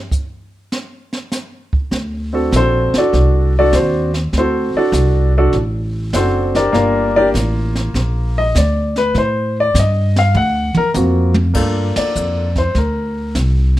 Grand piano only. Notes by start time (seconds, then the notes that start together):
2.33 C4 D4 F#4 A4
2.56 C4 F#4 A4 C5
2.98 D4 F#4 A4 D5
3.59 D4 F#4 A4 D5
3.73 C4 D4 F#4 C5
4.38 C4 F#4 A4 C5
4.77 D4 F#4 A4 D5
5.38 D4 F#4 A4 D5
6.13 C4 D4 F#4 A4 C5 F#5
6.55 D4 G4 A#4 D5
6.72 A#3 D4 F4 A#4
7.16 D4 G4 A#4 D5
8.38 D#5
8.58 D5
8.98 B4
9.18 C5
9.60 D5
9.79 D#5
10.19 F5
10.37 F#5
10.77 A#4
10.95 A#3 C4 F4 F#4
11.54 A#3 D4 F4 A4
11.97 D5
12.58 C5
12.78 A#4